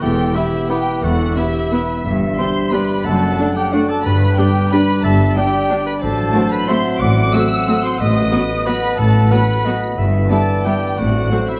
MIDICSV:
0, 0, Header, 1, 10, 480
1, 0, Start_track
1, 0, Key_signature, 1, "minor"
1, 0, Tempo, 337268
1, 24, Time_signature, 3, 2, 24, 8
1, 5305, Tempo, 328228
1, 13465, Tempo, 335570
1, 16740, End_track
2, 0, Start_track
2, 0, Title_t, "Violin section"
2, 0, Program_c, 0, 48
2, 25, Note_on_c, 0, 79, 73
2, 490, Note_off_c, 0, 79, 0
2, 501, Note_on_c, 0, 76, 64
2, 993, Note_off_c, 0, 76, 0
2, 998, Note_on_c, 0, 79, 71
2, 1468, Note_off_c, 0, 79, 0
2, 1474, Note_on_c, 0, 78, 68
2, 1938, Note_off_c, 0, 78, 0
2, 1941, Note_on_c, 0, 76, 72
2, 2891, Note_off_c, 0, 76, 0
2, 3378, Note_on_c, 0, 84, 79
2, 3837, Note_off_c, 0, 84, 0
2, 3867, Note_on_c, 0, 83, 67
2, 4330, Note_on_c, 0, 81, 66
2, 4336, Note_off_c, 0, 83, 0
2, 5050, Note_on_c, 0, 79, 68
2, 5057, Note_off_c, 0, 81, 0
2, 5293, Note_off_c, 0, 79, 0
2, 5296, Note_on_c, 0, 78, 67
2, 5394, Note_off_c, 0, 78, 0
2, 5534, Note_on_c, 0, 81, 74
2, 5761, Note_on_c, 0, 83, 75
2, 5766, Note_off_c, 0, 81, 0
2, 6234, Note_on_c, 0, 79, 72
2, 6249, Note_off_c, 0, 83, 0
2, 6732, Note_off_c, 0, 79, 0
2, 6737, Note_on_c, 0, 83, 83
2, 7212, Note_off_c, 0, 83, 0
2, 7213, Note_on_c, 0, 81, 72
2, 7683, Note_on_c, 0, 79, 75
2, 7691, Note_off_c, 0, 81, 0
2, 8406, Note_off_c, 0, 79, 0
2, 8421, Note_on_c, 0, 83, 82
2, 8513, Note_off_c, 0, 83, 0
2, 8636, Note_on_c, 0, 81, 76
2, 9357, Note_off_c, 0, 81, 0
2, 9371, Note_on_c, 0, 83, 79
2, 9619, Note_off_c, 0, 83, 0
2, 9630, Note_on_c, 0, 84, 82
2, 10094, Note_off_c, 0, 84, 0
2, 10096, Note_on_c, 0, 86, 82
2, 10564, Note_off_c, 0, 86, 0
2, 10571, Note_on_c, 0, 88, 92
2, 11315, Note_off_c, 0, 88, 0
2, 11328, Note_on_c, 0, 84, 77
2, 11550, Note_off_c, 0, 84, 0
2, 11557, Note_on_c, 0, 87, 78
2, 12506, Note_off_c, 0, 87, 0
2, 12534, Note_on_c, 0, 83, 78
2, 12982, Note_off_c, 0, 83, 0
2, 12994, Note_on_c, 0, 81, 71
2, 13460, Note_off_c, 0, 81, 0
2, 13473, Note_on_c, 0, 83, 73
2, 14184, Note_off_c, 0, 83, 0
2, 14892, Note_on_c, 0, 81, 68
2, 15353, Note_off_c, 0, 81, 0
2, 15379, Note_on_c, 0, 79, 58
2, 15848, Note_off_c, 0, 79, 0
2, 15858, Note_on_c, 0, 78, 69
2, 16579, Note_off_c, 0, 78, 0
2, 16580, Note_on_c, 0, 76, 59
2, 16740, Note_off_c, 0, 76, 0
2, 16740, End_track
3, 0, Start_track
3, 0, Title_t, "Clarinet"
3, 0, Program_c, 1, 71
3, 19, Note_on_c, 1, 69, 56
3, 486, Note_on_c, 1, 67, 57
3, 508, Note_off_c, 1, 69, 0
3, 983, Note_off_c, 1, 67, 0
3, 991, Note_on_c, 1, 71, 55
3, 1472, Note_on_c, 1, 69, 55
3, 1493, Note_off_c, 1, 71, 0
3, 1951, Note_on_c, 1, 67, 52
3, 1973, Note_off_c, 1, 69, 0
3, 2454, Note_on_c, 1, 71, 57
3, 2475, Note_off_c, 1, 67, 0
3, 2915, Note_off_c, 1, 71, 0
3, 2921, Note_on_c, 1, 76, 66
3, 3876, Note_on_c, 1, 74, 51
3, 3897, Note_off_c, 1, 76, 0
3, 4341, Note_on_c, 1, 78, 67
3, 4362, Note_off_c, 1, 74, 0
3, 5296, Note_on_c, 1, 74, 56
3, 5318, Note_off_c, 1, 78, 0
3, 5761, Note_off_c, 1, 74, 0
3, 5770, Note_on_c, 1, 71, 61
3, 6813, Note_off_c, 1, 71, 0
3, 7216, Note_on_c, 1, 76, 70
3, 7705, Note_on_c, 1, 74, 60
3, 7727, Note_off_c, 1, 76, 0
3, 8651, Note_on_c, 1, 72, 62
3, 8673, Note_off_c, 1, 74, 0
3, 9631, Note_on_c, 1, 76, 70
3, 9653, Note_off_c, 1, 72, 0
3, 10089, Note_on_c, 1, 78, 68
3, 10111, Note_off_c, 1, 76, 0
3, 11547, Note_on_c, 1, 71, 63
3, 11569, Note_off_c, 1, 78, 0
3, 12498, Note_off_c, 1, 71, 0
3, 12507, Note_on_c, 1, 75, 65
3, 12983, Note_on_c, 1, 78, 60
3, 13005, Note_off_c, 1, 75, 0
3, 13461, Note_off_c, 1, 78, 0
3, 13469, Note_on_c, 1, 78, 65
3, 13961, Note_on_c, 1, 75, 59
3, 13982, Note_off_c, 1, 78, 0
3, 14430, Note_on_c, 1, 76, 58
3, 14451, Note_off_c, 1, 75, 0
3, 14881, Note_on_c, 1, 74, 62
3, 14903, Note_off_c, 1, 76, 0
3, 16327, Note_on_c, 1, 72, 52
3, 16348, Note_off_c, 1, 74, 0
3, 16740, Note_off_c, 1, 72, 0
3, 16740, End_track
4, 0, Start_track
4, 0, Title_t, "Cor anglais"
4, 0, Program_c, 2, 69
4, 22, Note_on_c, 2, 67, 60
4, 494, Note_on_c, 2, 64, 59
4, 515, Note_off_c, 2, 67, 0
4, 985, Note_off_c, 2, 64, 0
4, 993, Note_on_c, 2, 67, 64
4, 1456, Note_off_c, 2, 67, 0
4, 1469, Note_on_c, 2, 66, 60
4, 1950, Note_on_c, 2, 64, 54
4, 1972, Note_off_c, 2, 66, 0
4, 2915, Note_off_c, 2, 64, 0
4, 3393, Note_on_c, 2, 72, 72
4, 3879, Note_on_c, 2, 71, 59
4, 3900, Note_off_c, 2, 72, 0
4, 4336, Note_off_c, 2, 71, 0
4, 4345, Note_on_c, 2, 69, 72
4, 5074, Note_on_c, 2, 67, 62
4, 5095, Note_off_c, 2, 69, 0
4, 5301, Note_off_c, 2, 67, 0
4, 5310, Note_on_c, 2, 66, 67
4, 5541, Note_on_c, 2, 69, 59
4, 5563, Note_off_c, 2, 66, 0
4, 5774, Note_off_c, 2, 69, 0
4, 5784, Note_on_c, 2, 71, 68
4, 6263, Note_on_c, 2, 67, 67
4, 6285, Note_off_c, 2, 71, 0
4, 6750, Note_off_c, 2, 67, 0
4, 6759, Note_on_c, 2, 71, 80
4, 7214, Note_off_c, 2, 71, 0
4, 7224, Note_on_c, 2, 69, 70
4, 7717, Note_on_c, 2, 67, 70
4, 7739, Note_off_c, 2, 69, 0
4, 8418, Note_off_c, 2, 67, 0
4, 8426, Note_on_c, 2, 71, 64
4, 8529, Note_off_c, 2, 71, 0
4, 8662, Note_on_c, 2, 69, 70
4, 9385, Note_on_c, 2, 71, 70
4, 9407, Note_off_c, 2, 69, 0
4, 9623, Note_on_c, 2, 72, 77
4, 9645, Note_off_c, 2, 71, 0
4, 10093, Note_on_c, 2, 74, 76
4, 10115, Note_off_c, 2, 72, 0
4, 10577, Note_on_c, 2, 76, 77
4, 10599, Note_off_c, 2, 74, 0
4, 11313, Note_off_c, 2, 76, 0
4, 11322, Note_on_c, 2, 72, 61
4, 11543, Note_off_c, 2, 72, 0
4, 11556, Note_on_c, 2, 75, 86
4, 12521, Note_on_c, 2, 71, 72
4, 12543, Note_off_c, 2, 75, 0
4, 12994, Note_on_c, 2, 69, 70
4, 13015, Note_off_c, 2, 71, 0
4, 13475, Note_on_c, 2, 71, 61
4, 13497, Note_off_c, 2, 69, 0
4, 14200, Note_off_c, 2, 71, 0
4, 14897, Note_on_c, 2, 69, 69
4, 15395, Note_on_c, 2, 67, 59
4, 15416, Note_off_c, 2, 69, 0
4, 15846, Note_on_c, 2, 66, 59
4, 15867, Note_off_c, 2, 67, 0
4, 16572, Note_on_c, 2, 64, 49
4, 16594, Note_off_c, 2, 66, 0
4, 16740, Note_off_c, 2, 64, 0
4, 16740, End_track
5, 0, Start_track
5, 0, Title_t, "Harp"
5, 0, Program_c, 3, 46
5, 0, Note_on_c, 3, 59, 48
5, 0, Note_on_c, 3, 71, 46
5, 0, Note_on_c, 3, 83, 50
5, 32, Note_on_c, 3, 52, 56
5, 266, Note_on_c, 3, 64, 45
5, 486, Note_off_c, 3, 71, 0
5, 503, Note_on_c, 3, 71, 49
5, 746, Note_on_c, 3, 76, 44
5, 978, Note_off_c, 3, 83, 0
5, 995, Note_on_c, 3, 83, 45
5, 1221, Note_off_c, 3, 76, 0
5, 1238, Note_on_c, 3, 76, 47
5, 1446, Note_off_c, 3, 52, 0
5, 1463, Note_on_c, 3, 52, 61
5, 1675, Note_off_c, 3, 64, 0
5, 1692, Note_on_c, 3, 64, 47
5, 1925, Note_off_c, 3, 71, 0
5, 1942, Note_on_c, 3, 71, 51
5, 2185, Note_off_c, 3, 76, 0
5, 2202, Note_on_c, 3, 76, 50
5, 2429, Note_off_c, 3, 83, 0
5, 2446, Note_on_c, 3, 83, 47
5, 2672, Note_off_c, 3, 76, 0
5, 2689, Note_on_c, 3, 76, 45
5, 2914, Note_on_c, 3, 43, 53
5, 2927, Note_off_c, 3, 64, 0
5, 2928, Note_off_c, 3, 52, 0
5, 2932, Note_off_c, 3, 76, 0
5, 3140, Note_on_c, 3, 55, 47
5, 3370, Note_off_c, 3, 71, 0
5, 3387, Note_on_c, 3, 71, 50
5, 3631, Note_on_c, 3, 67, 51
5, 3879, Note_on_c, 3, 74, 50
5, 4099, Note_off_c, 3, 67, 0
5, 4116, Note_on_c, 3, 67, 46
5, 4340, Note_on_c, 3, 42, 60
5, 4357, Note_off_c, 3, 55, 0
5, 4358, Note_off_c, 3, 59, 0
5, 4358, Note_off_c, 3, 83, 0
5, 4359, Note_off_c, 3, 43, 0
5, 4359, Note_off_c, 3, 71, 0
5, 4360, Note_off_c, 3, 67, 0
5, 4574, Note_on_c, 3, 57, 42
5, 4799, Note_off_c, 3, 74, 0
5, 4816, Note_on_c, 3, 74, 51
5, 5060, Note_on_c, 3, 69, 50
5, 5279, Note_off_c, 3, 74, 0
5, 5296, Note_on_c, 3, 74, 55
5, 5529, Note_off_c, 3, 69, 0
5, 5547, Note_on_c, 3, 69, 50
5, 5774, Note_on_c, 3, 43, 63
5, 5794, Note_off_c, 3, 42, 0
5, 5795, Note_off_c, 3, 69, 0
5, 5796, Note_off_c, 3, 57, 0
5, 6006, Note_on_c, 3, 55, 50
5, 6241, Note_off_c, 3, 74, 0
5, 6258, Note_on_c, 3, 74, 54
5, 6733, Note_off_c, 3, 74, 0
5, 6751, Note_on_c, 3, 74, 56
5, 7193, Note_off_c, 3, 43, 0
5, 7210, Note_on_c, 3, 43, 61
5, 7429, Note_off_c, 3, 55, 0
5, 7447, Note_on_c, 3, 55, 51
5, 7677, Note_off_c, 3, 74, 0
5, 7694, Note_on_c, 3, 74, 51
5, 7947, Note_on_c, 3, 67, 52
5, 8182, Note_off_c, 3, 74, 0
5, 8199, Note_on_c, 3, 74, 52
5, 8413, Note_off_c, 3, 67, 0
5, 8431, Note_on_c, 3, 67, 52
5, 8659, Note_on_c, 3, 45, 56
5, 8667, Note_off_c, 3, 43, 0
5, 8670, Note_off_c, 3, 55, 0
5, 8674, Note_off_c, 3, 67, 0
5, 8677, Note_off_c, 3, 74, 0
5, 8892, Note_on_c, 3, 54, 54
5, 9137, Note_on_c, 3, 72, 51
5, 9382, Note_on_c, 3, 66, 57
5, 9626, Note_on_c, 3, 78, 56
5, 9842, Note_off_c, 3, 66, 0
5, 9859, Note_on_c, 3, 66, 54
5, 10080, Note_off_c, 3, 45, 0
5, 10097, Note_on_c, 3, 45, 60
5, 10303, Note_off_c, 3, 54, 0
5, 10321, Note_on_c, 3, 54, 48
5, 10560, Note_off_c, 3, 72, 0
5, 10577, Note_on_c, 3, 72, 57
5, 10815, Note_off_c, 3, 66, 0
5, 10832, Note_on_c, 3, 66, 57
5, 11057, Note_off_c, 3, 78, 0
5, 11075, Note_on_c, 3, 78, 54
5, 11303, Note_off_c, 3, 66, 0
5, 11321, Note_on_c, 3, 66, 46
5, 11537, Note_off_c, 3, 45, 0
5, 11554, Note_on_c, 3, 45, 55
5, 11564, Note_off_c, 3, 72, 0
5, 11778, Note_on_c, 3, 59, 49
5, 12024, Note_on_c, 3, 71, 56
5, 12254, Note_off_c, 3, 66, 0
5, 12272, Note_on_c, 3, 66, 55
5, 12506, Note_off_c, 3, 78, 0
5, 12523, Note_on_c, 3, 78, 53
5, 12736, Note_off_c, 3, 71, 0
5, 12754, Note_on_c, 3, 71, 49
5, 12969, Note_off_c, 3, 45, 0
5, 12986, Note_on_c, 3, 45, 58
5, 13202, Note_off_c, 3, 59, 0
5, 13219, Note_on_c, 3, 59, 52
5, 13441, Note_off_c, 3, 71, 0
5, 13458, Note_on_c, 3, 71, 51
5, 13705, Note_off_c, 3, 66, 0
5, 13722, Note_on_c, 3, 66, 51
5, 13943, Note_off_c, 3, 78, 0
5, 13960, Note_on_c, 3, 78, 47
5, 14181, Note_off_c, 3, 71, 0
5, 14198, Note_on_c, 3, 71, 44
5, 14419, Note_on_c, 3, 43, 56
5, 14434, Note_off_c, 3, 54, 0
5, 14436, Note_off_c, 3, 78, 0
5, 14437, Note_off_c, 3, 45, 0
5, 14440, Note_off_c, 3, 66, 0
5, 14632, Note_off_c, 3, 59, 0
5, 14649, Note_on_c, 3, 59, 46
5, 14872, Note_off_c, 3, 71, 0
5, 14889, Note_on_c, 3, 71, 44
5, 15142, Note_on_c, 3, 64, 49
5, 15386, Note_on_c, 3, 76, 42
5, 15608, Note_off_c, 3, 71, 0
5, 15625, Note_on_c, 3, 71, 41
5, 15848, Note_on_c, 3, 45, 47
5, 15869, Note_off_c, 3, 43, 0
5, 15869, Note_off_c, 3, 71, 0
5, 15869, Note_off_c, 3, 76, 0
5, 15870, Note_off_c, 3, 64, 0
5, 15871, Note_off_c, 3, 59, 0
5, 16084, Note_on_c, 3, 60, 40
5, 16325, Note_on_c, 3, 69, 39
5, 16578, Note_on_c, 3, 72, 39
5, 16740, Note_off_c, 3, 45, 0
5, 16740, Note_off_c, 3, 60, 0
5, 16740, Note_off_c, 3, 69, 0
5, 16740, Note_off_c, 3, 72, 0
5, 16740, End_track
6, 0, Start_track
6, 0, Title_t, "Violin section"
6, 0, Program_c, 4, 48
6, 511, Note_on_c, 4, 64, 47
6, 514, Note_on_c, 4, 59, 43
6, 625, Note_off_c, 4, 64, 0
6, 628, Note_off_c, 4, 59, 0
6, 1003, Note_on_c, 4, 64, 52
6, 1014, Note_on_c, 4, 59, 51
6, 1117, Note_off_c, 4, 64, 0
6, 1128, Note_off_c, 4, 59, 0
6, 1953, Note_on_c, 4, 59, 51
6, 1955, Note_on_c, 4, 64, 50
6, 2067, Note_off_c, 4, 59, 0
6, 2069, Note_off_c, 4, 64, 0
6, 2460, Note_on_c, 4, 64, 49
6, 2461, Note_on_c, 4, 59, 46
6, 2574, Note_off_c, 4, 64, 0
6, 2575, Note_off_c, 4, 59, 0
6, 3398, Note_on_c, 4, 62, 47
6, 3405, Note_off_c, 4, 62, 0
6, 3405, Note_on_c, 4, 62, 47
6, 3519, Note_off_c, 4, 62, 0
6, 3884, Note_on_c, 4, 62, 51
6, 3889, Note_off_c, 4, 62, 0
6, 3889, Note_on_c, 4, 62, 50
6, 4002, Note_off_c, 4, 62, 0
6, 4826, Note_on_c, 4, 62, 51
6, 4833, Note_off_c, 4, 62, 0
6, 4833, Note_on_c, 4, 62, 52
6, 4947, Note_off_c, 4, 62, 0
6, 5306, Note_on_c, 4, 62, 51
6, 5308, Note_off_c, 4, 62, 0
6, 5308, Note_on_c, 4, 62, 48
6, 5425, Note_off_c, 4, 62, 0
6, 6271, Note_on_c, 4, 62, 53
6, 6274, Note_off_c, 4, 62, 0
6, 6274, Note_on_c, 4, 62, 51
6, 6391, Note_off_c, 4, 62, 0
6, 6767, Note_on_c, 4, 62, 54
6, 6770, Note_off_c, 4, 62, 0
6, 6770, Note_on_c, 4, 62, 48
6, 6887, Note_off_c, 4, 62, 0
6, 7700, Note_on_c, 4, 62, 53
6, 7704, Note_off_c, 4, 62, 0
6, 7704, Note_on_c, 4, 62, 47
6, 7821, Note_off_c, 4, 62, 0
6, 8186, Note_on_c, 4, 62, 56
6, 8188, Note_off_c, 4, 62, 0
6, 8188, Note_on_c, 4, 62, 56
6, 8305, Note_off_c, 4, 62, 0
6, 9130, Note_on_c, 4, 66, 51
6, 9134, Note_on_c, 4, 60, 57
6, 9247, Note_off_c, 4, 66, 0
6, 9251, Note_off_c, 4, 60, 0
6, 9624, Note_on_c, 4, 66, 51
6, 9628, Note_on_c, 4, 60, 53
6, 9741, Note_off_c, 4, 66, 0
6, 9745, Note_off_c, 4, 60, 0
6, 10584, Note_on_c, 4, 66, 56
6, 10586, Note_on_c, 4, 60, 47
6, 10701, Note_off_c, 4, 66, 0
6, 10703, Note_off_c, 4, 60, 0
6, 11073, Note_on_c, 4, 60, 54
6, 11073, Note_on_c, 4, 66, 51
6, 11190, Note_off_c, 4, 60, 0
6, 11190, Note_off_c, 4, 66, 0
6, 12017, Note_on_c, 4, 66, 54
6, 12020, Note_on_c, 4, 59, 52
6, 12134, Note_off_c, 4, 66, 0
6, 12137, Note_off_c, 4, 59, 0
6, 12524, Note_on_c, 4, 59, 55
6, 12528, Note_on_c, 4, 66, 54
6, 12641, Note_off_c, 4, 59, 0
6, 12645, Note_off_c, 4, 66, 0
6, 13468, Note_on_c, 4, 66, 48
6, 13474, Note_on_c, 4, 59, 51
6, 13583, Note_off_c, 4, 66, 0
6, 13588, Note_off_c, 4, 59, 0
6, 13969, Note_on_c, 4, 59, 46
6, 13972, Note_on_c, 4, 66, 51
6, 14083, Note_off_c, 4, 59, 0
6, 14086, Note_off_c, 4, 66, 0
6, 14901, Note_on_c, 4, 59, 45
6, 14908, Note_on_c, 4, 64, 50
6, 15016, Note_off_c, 4, 59, 0
6, 15022, Note_off_c, 4, 64, 0
6, 15405, Note_on_c, 4, 59, 46
6, 15407, Note_on_c, 4, 64, 43
6, 15519, Note_off_c, 4, 59, 0
6, 15521, Note_off_c, 4, 64, 0
6, 16346, Note_on_c, 4, 60, 44
6, 16349, Note_on_c, 4, 66, 43
6, 16460, Note_off_c, 4, 60, 0
6, 16463, Note_off_c, 4, 66, 0
6, 16740, End_track
7, 0, Start_track
7, 0, Title_t, "French horn section"
7, 0, Program_c, 5, 60
7, 20, Note_on_c, 5, 64, 61
7, 23, Note_on_c, 5, 59, 62
7, 2852, Note_off_c, 5, 64, 0
7, 2854, Note_off_c, 5, 59, 0
7, 2913, Note_on_c, 5, 62, 54
7, 2918, Note_on_c, 5, 55, 58
7, 4315, Note_off_c, 5, 55, 0
7, 4353, Note_on_c, 5, 54, 58
7, 5718, Note_off_c, 5, 62, 0
7, 5782, Note_off_c, 5, 54, 0
7, 5782, Note_on_c, 5, 55, 67
7, 5790, Note_on_c, 5, 62, 70
7, 8406, Note_off_c, 5, 55, 0
7, 8654, Note_on_c, 5, 54, 66
7, 9573, Note_off_c, 5, 62, 0
7, 9640, Note_on_c, 5, 60, 65
7, 11486, Note_off_c, 5, 54, 0
7, 11551, Note_off_c, 5, 60, 0
7, 11554, Note_on_c, 5, 59, 66
7, 11567, Note_on_c, 5, 54, 67
7, 14373, Note_off_c, 5, 54, 0
7, 14411, Note_off_c, 5, 59, 0
7, 14428, Note_on_c, 5, 59, 60
7, 14436, Note_on_c, 5, 52, 57
7, 15828, Note_off_c, 5, 59, 0
7, 15832, Note_off_c, 5, 52, 0
7, 15857, Note_on_c, 5, 60, 45
7, 15862, Note_on_c, 5, 54, 49
7, 16740, Note_off_c, 5, 54, 0
7, 16740, Note_off_c, 5, 60, 0
7, 16740, End_track
8, 0, Start_track
8, 0, Title_t, "Viola section"
8, 0, Program_c, 6, 48
8, 494, Note_on_c, 6, 59, 40
8, 608, Note_off_c, 6, 59, 0
8, 986, Note_on_c, 6, 59, 48
8, 989, Note_off_c, 6, 59, 0
8, 989, Note_on_c, 6, 59, 51
8, 1103, Note_off_c, 6, 59, 0
8, 1940, Note_on_c, 6, 59, 47
8, 1942, Note_off_c, 6, 59, 0
8, 1942, Note_on_c, 6, 59, 40
8, 2056, Note_off_c, 6, 59, 0
8, 2452, Note_on_c, 6, 59, 44
8, 2454, Note_off_c, 6, 59, 0
8, 2454, Note_on_c, 6, 59, 45
8, 2568, Note_off_c, 6, 59, 0
8, 3391, Note_on_c, 6, 59, 47
8, 3397, Note_on_c, 6, 55, 42
8, 3504, Note_off_c, 6, 59, 0
8, 3510, Note_off_c, 6, 55, 0
8, 3876, Note_on_c, 6, 55, 50
8, 3878, Note_on_c, 6, 59, 47
8, 3989, Note_off_c, 6, 55, 0
8, 3992, Note_off_c, 6, 59, 0
8, 4821, Note_on_c, 6, 57, 49
8, 4824, Note_on_c, 6, 62, 49
8, 4935, Note_off_c, 6, 57, 0
8, 4938, Note_off_c, 6, 62, 0
8, 5315, Note_on_c, 6, 57, 51
8, 5315, Note_on_c, 6, 62, 48
8, 5432, Note_off_c, 6, 57, 0
8, 5432, Note_off_c, 6, 62, 0
8, 6261, Note_on_c, 6, 55, 49
8, 6263, Note_on_c, 6, 62, 46
8, 6378, Note_off_c, 6, 55, 0
8, 6380, Note_off_c, 6, 62, 0
8, 6758, Note_on_c, 6, 62, 54
8, 6759, Note_on_c, 6, 55, 51
8, 6875, Note_off_c, 6, 62, 0
8, 6876, Note_off_c, 6, 55, 0
8, 7699, Note_on_c, 6, 55, 51
8, 7699, Note_on_c, 6, 62, 47
8, 7816, Note_off_c, 6, 55, 0
8, 7816, Note_off_c, 6, 62, 0
8, 8192, Note_on_c, 6, 62, 51
8, 8193, Note_on_c, 6, 55, 54
8, 8309, Note_off_c, 6, 62, 0
8, 8310, Note_off_c, 6, 55, 0
8, 9129, Note_on_c, 6, 54, 46
8, 9129, Note_on_c, 6, 57, 54
8, 9246, Note_off_c, 6, 54, 0
8, 9246, Note_off_c, 6, 57, 0
8, 9636, Note_on_c, 6, 54, 50
8, 9636, Note_on_c, 6, 57, 53
8, 9753, Note_off_c, 6, 54, 0
8, 9753, Note_off_c, 6, 57, 0
8, 10584, Note_on_c, 6, 57, 49
8, 10586, Note_on_c, 6, 54, 51
8, 10701, Note_off_c, 6, 57, 0
8, 10703, Note_off_c, 6, 54, 0
8, 11080, Note_on_c, 6, 57, 54
8, 11081, Note_on_c, 6, 54, 53
8, 11197, Note_off_c, 6, 57, 0
8, 11198, Note_off_c, 6, 54, 0
8, 12027, Note_on_c, 6, 54, 47
8, 12029, Note_on_c, 6, 59, 53
8, 12144, Note_off_c, 6, 54, 0
8, 12146, Note_off_c, 6, 59, 0
8, 12523, Note_on_c, 6, 54, 52
8, 12527, Note_on_c, 6, 59, 52
8, 12640, Note_off_c, 6, 54, 0
8, 12644, Note_off_c, 6, 59, 0
8, 13467, Note_on_c, 6, 54, 47
8, 13469, Note_on_c, 6, 59, 45
8, 13581, Note_off_c, 6, 54, 0
8, 13583, Note_off_c, 6, 59, 0
8, 13962, Note_on_c, 6, 54, 54
8, 13962, Note_on_c, 6, 59, 51
8, 14076, Note_off_c, 6, 54, 0
8, 14076, Note_off_c, 6, 59, 0
8, 14890, Note_on_c, 6, 59, 45
8, 14893, Note_on_c, 6, 55, 44
8, 15005, Note_off_c, 6, 59, 0
8, 15007, Note_off_c, 6, 55, 0
8, 15397, Note_on_c, 6, 59, 47
8, 15398, Note_on_c, 6, 55, 46
8, 15511, Note_off_c, 6, 59, 0
8, 15512, Note_off_c, 6, 55, 0
8, 16323, Note_on_c, 6, 54, 42
8, 16327, Note_on_c, 6, 57, 38
8, 16437, Note_off_c, 6, 54, 0
8, 16442, Note_off_c, 6, 57, 0
8, 16740, End_track
9, 0, Start_track
9, 0, Title_t, "Cello section"
9, 0, Program_c, 7, 48
9, 19, Note_on_c, 7, 40, 64
9, 413, Note_off_c, 7, 40, 0
9, 1463, Note_on_c, 7, 40, 60
9, 1858, Note_off_c, 7, 40, 0
9, 2913, Note_on_c, 7, 43, 65
9, 3303, Note_off_c, 7, 43, 0
9, 4338, Note_on_c, 7, 42, 67
9, 4730, Note_off_c, 7, 42, 0
9, 5778, Note_on_c, 7, 43, 71
9, 6174, Note_off_c, 7, 43, 0
9, 7220, Note_on_c, 7, 43, 62
9, 7612, Note_off_c, 7, 43, 0
9, 8661, Note_on_c, 7, 45, 68
9, 9052, Note_off_c, 7, 45, 0
9, 10092, Note_on_c, 7, 45, 71
9, 10488, Note_off_c, 7, 45, 0
9, 11551, Note_on_c, 7, 45, 67
9, 11941, Note_off_c, 7, 45, 0
9, 12987, Note_on_c, 7, 45, 67
9, 13381, Note_off_c, 7, 45, 0
9, 14427, Note_on_c, 7, 43, 63
9, 14812, Note_off_c, 7, 43, 0
9, 15848, Note_on_c, 7, 45, 56
9, 16237, Note_off_c, 7, 45, 0
9, 16740, End_track
10, 0, Start_track
10, 0, Title_t, "Double bass section"
10, 0, Program_c, 8, 48
10, 31, Note_on_c, 8, 28, 59
10, 419, Note_off_c, 8, 28, 0
10, 1465, Note_on_c, 8, 28, 66
10, 1859, Note_off_c, 8, 28, 0
10, 2913, Note_on_c, 8, 31, 62
10, 3303, Note_off_c, 8, 31, 0
10, 4346, Note_on_c, 8, 30, 60
10, 4734, Note_off_c, 8, 30, 0
10, 5776, Note_on_c, 8, 31, 59
10, 6173, Note_off_c, 8, 31, 0
10, 7229, Note_on_c, 8, 31, 66
10, 7616, Note_off_c, 8, 31, 0
10, 8661, Note_on_c, 8, 33, 59
10, 9052, Note_off_c, 8, 33, 0
10, 10100, Note_on_c, 8, 33, 68
10, 10492, Note_off_c, 8, 33, 0
10, 11547, Note_on_c, 8, 33, 73
10, 11940, Note_off_c, 8, 33, 0
10, 12983, Note_on_c, 8, 33, 59
10, 13379, Note_off_c, 8, 33, 0
10, 14425, Note_on_c, 8, 31, 60
10, 14811, Note_off_c, 8, 31, 0
10, 15857, Note_on_c, 8, 33, 53
10, 16241, Note_off_c, 8, 33, 0
10, 16740, End_track
0, 0, End_of_file